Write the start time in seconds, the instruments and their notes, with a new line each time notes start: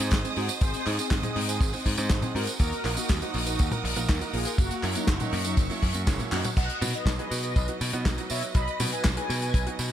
Already playing: string section C5 D#5 G#5 D#6
0.00 picked electric bass G#2, grand piano C4 D#4 G#4 C5, closed hi-hat
0.11 picked electric bass G#1, synth arpeggio sound G#4, kick, snare, clap, closed hi-hat, tambourine
0.24 synth arpeggio sound C4, grand piano C4 D#4 G#4 C5, closed hi-hat, tambourine
0.36 picked electric bass G#2, synth arpeggio sound C4, analog polysynth D#4 F#4, open hi-hat
0.49 synth arpeggio sound C5, closed hi-hat, tambourine
0.61 picked electric bass G#1, synth arpeggio sound C4, analog polysynth G#4 C5, string section F#5, kick, closed hi-hat, tambourine
0.74 synth arpeggio sound C4, closed hi-hat, tambourine
0.86 picked electric bass G#2, grand piano C4 D#4 G#4 C5, synth arpeggio sound D#4, clap, open hi-hat
0.99 synth arpeggio sound C4, analog polysynth C4 G#4, closed hi-hat, tambourine
1.11 picked electric bass G#1, synth arpeggio sound G#4, kick, snare, clap, closed hi-hat, tambourine
1.23 synth arpeggio sound C4, analog polysynth C4 G#4, grand piano C4 D#4 G#4 D#5, closed hi-hat, high tom, tambourine
1.36 picked electric bass G#2, synth arpeggio sound C4, open hi-hat
1.48 analog polysynth C4 G#4, synth arpeggio sound C5, closed hi-hat, tambourine
1.61 picked electric bass G#1, synth arpeggio sound C4, kick, closed hi-hat, tambourine
1.73 synth arpeggio sound C4, grand piano C4 D#4 G#4 C5, open hi-hat, tambourine
1.85 picked electric bass G#2, synth arpeggio sound D#4, kick, open hi-hat
1.97 picked electric bass G#2, synth arpeggio sound C4, grand piano C4 D#4 G#4 C5, closed hi-hat, tambourine
2.10 picked electric bass G#1, synth arpeggio sound G#4, kick, snare, clap, closed hi-hat
2.22 synth arpeggio sound C4, grand piano C4 D#4 G#4 C5, closed hi-hat, high tom, tambourine
2.35 picked electric bass G#2, synth arpeggio sound C4, analog polysynth F#4 A#4, open hi-hat
2.47 synth arpeggio sound C5, closed hi-hat, tambourine
2.59 picked electric bass D#2, synth arpeggio sound A#3, analog polysynth F#4 A#4, string section A#4 D#6, kick, closed hi-hat, tambourine
2.72 closed hi-hat, tambourine
2.84 picked electric bass A#1, grand piano A#3 D#4 F#4 A#4, synth arpeggio sound D#4, clap, open hi-hat
2.97 synth arpeggio sound A#3, analog polysynth D#4 F#4, closed hi-hat, tambourine
3.09 picked electric bass D#2, synth arpeggio sound F#4, kick, snare, clap, closed hi-hat, tambourine
3.22 synth arpeggio sound A#3, grand piano A#3 D#4 F#4 C5, analog polysynth D#4 F#4, closed hi-hat, tambourine
3.34 picked electric bass A#1, synth arpeggio sound A#3, open hi-hat
3.46 analog polysynth D#4 F#4, synth arpeggio sound A#4, closed hi-hat, tambourine
3.59 picked electric bass D#2, synth arpeggio sound A#3, kick, closed hi-hat, tambourine
3.71 synth arpeggio sound A#3, grand piano A#3 D#4 F#4 A#4, closed hi-hat, high tom, tambourine
3.84 picked electric bass A#1, synth arpeggio sound D#4, open hi-hat
3.96 picked electric bass A#1, synth arpeggio sound A#3, grand piano A#3 D#4 F#4 A#4, closed hi-hat, tambourine
4.09 picked electric bass D#2, synth arpeggio sound F#4, kick, snare, clap, closed hi-hat, tambourine
4.21 synth arpeggio sound A#3, grand piano A#3 D#4 F#4 A#4, closed hi-hat, tambourine
4.33 picked electric bass A#1, synth arpeggio sound A#3, analog polysynth F4 G#4, open hi-hat
4.45 synth arpeggio sound A#4, closed hi-hat, tambourine
4.58 picked electric bass F#1, synth arpeggio sound A#3, analog polysynth A#3 F#4, string section E5 C#6, kick, closed hi-hat, tambourine
4.71 synth arpeggio sound A#3, closed hi-hat, tambourine
4.83 picked electric bass F#2, grand piano F#3 A#3 C#4 E4, synth arpeggio sound C#4, clap, open hi-hat
4.95 analog polysynth F#3 D#4, synth arpeggio sound A#3, closed hi-hat, tambourine
5.07 picked electric bass F#1, synth arpeggio sound E4, kick, snare, clap, closed hi-hat, tambourine
5.20 analog polysynth F#3 D#4, grand piano F#3 A#3 C#4 F#4, synth arpeggio sound A#3, closed hi-hat, high tom, tambourine
5.33 picked electric bass F#2, synth arpeggio sound A#3, snare, open hi-hat
5.44 analog polysynth F#3 D#4, synth arpeggio sound F#4, closed hi-hat, tambourine
5.57 picked electric bass F#1, synth arpeggio sound A#3, kick, closed hi-hat, tambourine
5.70 grand piano F#3 A#3 C#4 E4, synth arpeggio sound A#3, open hi-hat, tambourine
5.82 picked electric bass F#2, synth arpeggio sound C#4, kick, open hi-hat
5.94 picked electric bass F#2, synth arpeggio sound A#3, closed hi-hat, tambourine
6.07 picked electric bass F#1, grand piano F#3 A#3 C#4 G#4, synth arpeggio sound E4, kick, snare, clap, closed hi-hat, tambourine
6.19 grand piano F#3 A#3 C#4 E4, synth arpeggio sound A#3, closed hi-hat, high tom, tambourine
6.32 picked electric bass F#2, grand piano F#3 A#3 C#4 F#4, analog polysynth F#3 D#4, synth arpeggio sound A#3, clap, open hi-hat
6.44 synth arpeggio sound F#4, closed hi-hat, high tom, tambourine
6.56 picked electric bass B1, string section F#4 B4 D#5, analog polysynth D#5 F#5, kick, closed hi-hat, crash, tambourine
6.70 closed hi-hat
6.82 picked electric bass B2, grand piano F#3 B3 D#4 F#4, open hi-hat, high tom, tambourine
6.94 analog polysynth B4 D#5, closed hi-hat, tambourine
7.06 picked electric bass B1, kick, snare, clap, closed hi-hat, tambourine
7.19 grand piano F#3 B3 D#4 G#4, analog polysynth B4 D#5, closed hi-hat
7.31 picked electric bass B2, open hi-hat, tambourine
7.43 analog polysynth B4 D#5, closed hi-hat, tambourine
7.56 picked electric bass B1, kick, closed hi-hat, tambourine
7.68 grand piano F#3 B3 D#4 F#4, closed hi-hat
7.81 picked electric bass B2, open hi-hat, tambourine
7.93 picked electric bass B2, grand piano F#3 B3 D#4 F#4, closed hi-hat, tambourine
8.05 picked electric bass B1, kick, snare, clap, closed hi-hat, tambourine
8.18 grand piano F#3 B3 D#4 F#4, closed hi-hat, tambourine
8.30 picked electric bass B2, analog polysynth C#5 E5, open hi-hat, tambourine
8.42 closed hi-hat, tambourine
8.55 picked electric bass B1, analog polysynth D#5 B5, kick, closed hi-hat, tambourine
8.68 closed hi-hat
8.80 picked electric bass B2, grand piano F#3 B3 D#4 F#4, open hi-hat, high tom, tambourine
8.92 analog polysynth B4 G#5, closed hi-hat, tambourine
9.04 picked electric bass B1, kick, snare, clap, closed hi-hat, tambourine
9.17 grand piano F#3 B3 D#4 G#4, analog polysynth B4 G#5, closed hi-hat
9.30 picked electric bass B2, snare, open hi-hat, tambourine
9.42 analog polysynth B4 G#5, closed hi-hat, tambourine
9.54 picked electric bass B1, kick, closed hi-hat, tambourine
9.67 grand piano F#3 B3 D#4 F#4, closed hi-hat
9.79 picked electric bass B2, open hi-hat, tambourine